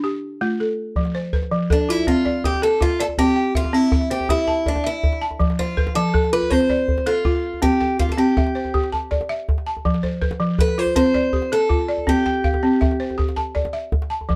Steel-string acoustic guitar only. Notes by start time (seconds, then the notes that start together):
1.72 D4
1.90 E4
2.08 F4
2.45 G4
2.63 A4
2.82 F4
3.00 A4
3.19 G4
3.57 F4
3.74 E4
4.11 G4
4.30 E4
4.68 D4
4.86 E4
5.59 F4
5.95 A4
6.33 B4
6.50 C5
7.07 F4
7.62 G4
7.99 F4
8.12 A4
8.18 G4
10.60 B4
10.79 C5
10.96 C5
11.53 A4
12.09 G4